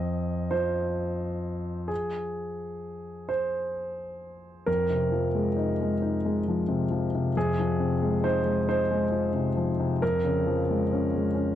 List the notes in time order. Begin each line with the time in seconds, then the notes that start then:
Already playing: F2 D#5
0.51 F3 C5
1.88 G#4
3.29 C5
4.67 F2 A#4
4.90 C3
5.12 F3
5.35 G#3
5.57 D#4
5.81 G#3
6.02 D#4
6.25 G#3
6.48 F3
6.68 C3
6.92 F3
7.15 C3
7.37 F2 G#4
7.59 F3
7.80 C3
8.02 G#3
8.24 D#4 C5
8.46 G#3
8.69 D#4 C5
8.91 G#3
9.12 F3
9.34 C3
9.57 F3
9.80 C3
10.02 F2 A#4
10.25 C#3
10.47 F3
10.70 G#3
10.93 C#4
11.15 G#3
11.35 C#4